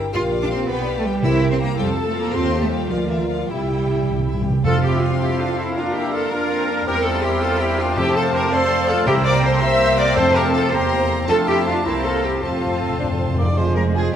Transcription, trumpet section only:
4.65 4.83 F4 medium
4.85 5.03 E4 medium
5.03 5.21 D4 medium
5.21 5.40 E4 medium
5.40 5.59 D4 medium
5.59 5.67 C4 medium
5.77 5.95 D4 medium
5.95 6.14 E4 medium
6.14 6.31 F4 medium
6.32 6.85 F4 medium
6.86 6.95 G4 medium
7.04 7.23 F4 medium
7.23 7.41 E4 medium
7.41 7.60 F4 loud
7.60 7.79 E4 medium
7.79 7.97 D4 medium
7.97 8.16 E4 medium
8.16 8.34 F4 medium
8.33 8.52 G4 medium
8.52 8.88 A4 loud
8.89 9.07 F4 loud
9.07 9.25 E4 loud
9.25 9.34 A#4 medium
9.44 9.62 A4 medium
9.62 9.98 C5 loud
9.99 10.17 A#4 loud
10.17 10.26 A4 loud
10.36 10.44 G4 loud
10.54 10.73 F4 loud
10.73 11.09 G4 medium
11.29 11.46 F4 medium
11.47 11.66 E4 medium
11.66 11.85 D4 medium
11.85 12.04 C4 medium
12.04 12.23 F4 medium
12.24 12.32 E4 medium
12.42 13.36 C4 medium

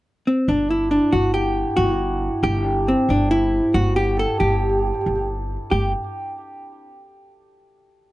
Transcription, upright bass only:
0.48 0.97 G1 medium
1.13 1.62 G1 medium
1.78 2.27 G1 medium
2.43 2.93 G1 medium
3.09 3.58 G1 medium
3.74 4.24 G1 medium
4.41 4.90 G1 medium
5.06 5.55 G1 medium
5.72 5.92 G1 medium

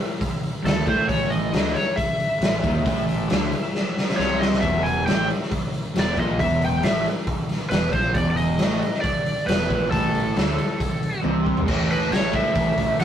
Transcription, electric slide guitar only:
0.66 0.86 A4 medium
0.89 1.08 C5 medium
1.09 1.29 C#5 medium
1.30 1.76 D#5 medium
1.75 1.95 C#5 medium
1.96 4.24 E5 medium
4.17 4.41 C#5 medium
4.39 4.60 D#5 medium
4.61 4.84 E5 medium
4.83 5.06 G#5 medium
5.07 5.27 G5 medium
6.01 6.20 D5 medium
6.20 6.40 D#5 medium
6.41 6.63 E5 medium
6.64 6.86 G5 medium
6.84 7.04 E5 medium
7.70 7.93 B4 medium
7.93 8.16 C5 medium
8.14 8.29 D5 loud
8.30 8.37 D5 medium
8.37 9.00 D#5 loud
9.01 9.48 D5 loud
9.46 9.91 B4 medium
9.91 11.20 A4 medium
11.92 12.12 B4 medium
12.13 12.34 C#5 medium
12.35 12.98 E5 medium
13.01 13.04 F#5 medium

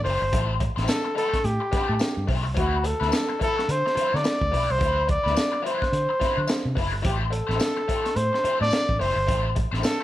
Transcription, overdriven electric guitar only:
0.04 0.21 A3 medium
0.04 0.21 E4 medium
0.04 0.21 G4 medium
0.04 0.20 C5 medium
0.21 muted overdriven electric guitar stroke soft
0.33 0.52 A3 medium
0.33 0.52 E4 medium
0.33 0.53 G4 medium
0.33 0.53 C5 medium
0.60 muted overdriven electric guitar stroke medium
0.76 0.87 A3 medium
0.76 0.87 E4 medium
0.76 0.88 G4 medium
0.76 0.88 C5 medium
0.88 muted overdriven electric guitar stroke soft
1.04 muted overdriven electric guitar stroke soft
1.15 1.37 A3 medium
1.15 1.32 E4 medium
1.15 1.31 G4 medium
1.15 1.31 C5 medium
1.32 muted overdriven electric guitar stroke medium
1.60 muted overdriven electric guitar stroke soft
1.72 1.94 A3 medium
1.72 1.88 E4 medium
1.72 1.87 G4 medium
1.72 1.87 C5 loud
1.88 muted overdriven electric guitar stroke medium
2.00 muted overdriven electric guitar stroke soft
2.27 2.44 A3 medium
2.27 2.44 E4 medium
2.27 2.43 G4 medium
2.27 2.43 C5 medium
2.44 muted overdriven electric guitar stroke soft
2.54 2.75 F#3 medium
2.54 2.75 C4 medium
2.54 2.76 E4 medium
2.54 2.76 B4 medium
2.83 muted overdriven electric guitar stroke soft
3.00 3.10 F#3 medium
3.00 3.11 C4 medium
3.00 3.11 E4 medium
3.00 3.12 B4 medium
3.11 muted overdriven electric guitar stroke soft
3.29 muted overdriven electric guitar stroke soft
3.39 3.60 F#3 medium
3.39 3.57 C4 medium
3.39 3.57 E4 medium
3.39 3.56 B4 loud
3.57 muted overdriven electric guitar stroke soft
3.86 muted overdriven electric guitar stroke medium
3.95 4.15 F#3 medium
3.95 4.13 C4 medium
3.95 4.12 E4 medium
3.95 4.12 B4 medium
4.13 muted overdriven electric guitar stroke soft
4.24 muted overdriven electric guitar stroke soft
4.52 4.68 F#3 medium
4.52 4.69 C4 medium
4.52 4.68 E4 medium
4.52 4.67 B4 medium
4.68 muted overdriven electric guitar stroke soft
4.78 4.99 F#3 medium
4.78 4.99 C4 medium
4.78 5.00 E4 medium
4.78 5.00 B4 medium
5.07 muted overdriven electric guitar stroke soft
5.24 5.34 F#3 soft
5.24 5.35 C4 medium
5.24 5.35 E4 medium
5.24 5.35 B4 medium
5.35 muted overdriven electric guitar stroke soft
5.52 muted overdriven electric guitar stroke medium
5.62 5.83 F#3 medium
5.62 5.81 C4 medium
5.62 5.80 E4 medium
5.62 5.79 B4 medium
5.81 muted overdriven electric guitar stroke soft
6.09 muted overdriven electric guitar stroke soft
6.20 6.40 F#3 medium
6.20 6.37 C4 medium
6.20 6.36 E4 medium
6.20 6.36 B4 medium
6.37 muted overdriven electric guitar stroke soft
6.47 muted overdriven electric guitar stroke medium
6.75 6.92 F#3 medium
6.75 6.92 C4 medium
6.75 6.91 E4 medium
6.75 6.91 B4 medium
6.92 muted overdriven electric guitar stroke soft
7.02 7.23 A3 medium
7.02 7.23 E4 medium
7.02 7.24 G4 medium
7.02 7.24 C5 medium
7.30 muted overdriven electric guitar stroke medium
7.47 7.58 A3 medium
7.47 7.59 E4 medium
7.47 7.59 G4 medium
7.47 7.59 C5 medium
7.59 muted overdriven electric guitar stroke soft
7.76 muted overdriven electric guitar stroke soft
7.88 8.08 A3 medium
7.88 8.05 E4 medium
7.88 8.05 G4 loud
7.88 8.04 C5 medium
8.05 muted overdriven electric guitar stroke soft
8.33 muted overdriven electric guitar stroke soft
8.44 8.63 A3 medium
8.44 8.60 E4 medium
8.44 8.60 G4 medium
8.44 8.59 C5 medium
8.60 muted overdriven electric guitar stroke soft
8.72 muted overdriven electric guitar stroke soft
8.99 9.16 A3 medium
8.99 9.16 E4 medium
8.99 9.16 G4 medium
8.99 9.15 C5 medium
9.16 muted overdriven electric guitar stroke soft
9.27 9.47 A3 medium
9.27 9.47 E4 medium
9.27 9.48 G4 medium
9.27 9.48 C5 medium
9.56 muted overdriven electric guitar stroke soft
9.71 9.82 A3 soft
9.71 9.83 E4 medium
9.71 9.84 G4 medium
9.71 9.83 C5 medium
9.84 muted overdriven electric guitar stroke soft
10.00 muted overdriven electric guitar stroke soft

